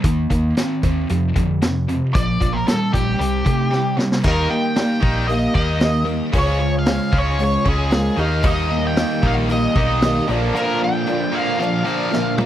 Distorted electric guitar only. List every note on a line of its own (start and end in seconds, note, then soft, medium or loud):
0.05 0.28 D#3 medium
0.05 0.29 A#3 medium
0.30 0.54 D#3 medium
0.30 0.54 A#3 medium
0.58 0.81 D#3 medium
0.58 0.81 C4 medium
0.83 1.07 D#3 medium
0.83 1.08 C4 medium
1.10 1.34 F2 medium
1.10 1.34 C3 medium
1.36 1.60 F2 medium
1.36 1.60 D3 medium
1.62 1.86 F2 medium
1.62 1.86 C3 medium
1.88 2.12 F2 medium
1.88 2.12 C3 medium
2.14 2.38 A#2 medium
2.14 2.39 F3 medium
2.40 2.65 A#2 medium
2.40 2.65 F3 medium
2.67 2.91 A#2 medium
2.67 2.91 G3 medium
2.93 3.17 A#2 medium
2.93 3.17 G3 medium
3.19 3.43 C3 medium
3.19 3.44 G3 medium
3.45 3.69 C3 medium
3.45 3.70 A3 medium
3.71 3.96 C3 medium
3.71 3.96 G3 medium
3.97 4.22 C3 medium
3.97 4.23 G3 medium
4.24 4.49 D#3 medium
4.24 4.49 A#3 medium
4.24 4.50 D#4 medium
4.50 4.75 D#3 medium
4.50 4.75 A#3 medium
4.77 5.00 D#3 medium
4.77 5.00 A#3 medium
5.01 5.27 D#3 medium
5.01 5.27 A#3 loud
5.01 5.28 D#4 loud
5.28 5.53 D#3 medium
5.28 5.53 A#3 medium
5.54 5.79 D#3 medium
5.54 5.79 A#3 medium
5.54 5.81 D#4 medium
5.80 6.04 D#3 medium
5.80 6.04 A#3 medium
6.05 6.31 D#3 medium
6.05 6.31 A#3 medium
6.33 6.58 C#3 medium
6.33 6.59 G#3 medium
6.33 6.60 C#4 medium
6.59 6.84 C#3 medium
6.59 6.85 G#3 medium
6.87 7.10 C#3 medium
6.87 7.11 G#3 medium
7.12 7.37 C#3 loud
7.12 7.37 G#3 medium
7.12 7.38 C#4 loud
7.38 7.63 C#3 medium
7.38 7.63 G#3 medium
7.65 7.89 C#3 medium
7.65 7.90 G#3 medium
7.65 7.91 C#4 medium
7.90 8.15 C#3 medium
7.90 8.16 G#3 medium
8.16 8.41 D#3 medium
8.16 8.43 A#3 loud
8.16 8.43 D#4 loud
8.43 8.69 D#3 medium
8.43 8.69 A#3 medium
8.43 8.69 D#4 medium
8.70 8.95 D#3 medium
8.70 8.95 A#3 medium
8.96 9.21 D#3 medium
8.96 9.21 A#3 medium
9.22 9.47 D#3 loud
9.22 9.48 A#3 medium
9.22 9.49 D#4 medium
9.49 9.73 D#3 medium
9.49 9.73 A#3 medium
9.76 10.01 D#3 loud
9.76 10.01 A#3 loud
9.76 10.01 D#4 loud
10.03 10.26 D#3 medium
10.03 10.26 A#3 medium
10.28 10.52 A#2 loud
10.28 10.54 F3 medium
10.28 10.53 A#3 loud
10.54 10.79 A#2 medium
10.54 10.80 F3 medium
10.54 10.79 A#3 medium
10.81 11.05 A#2 medium
10.81 11.05 F3 medium
11.07 11.31 A#2 medium
11.07 11.31 F3 medium
11.32 11.57 A#2 medium
11.32 11.58 F3 medium
11.32 11.58 A#3 loud
11.58 11.83 A#2 medium
11.58 11.83 F3 medium
11.85 12.10 A#2 medium
11.85 12.10 F3 loud
11.85 12.11 A#3 loud
12.11 12.35 A#2 medium
12.11 12.35 F3 medium
12.38 12.46 A#2 medium
12.38 12.46 F3 medium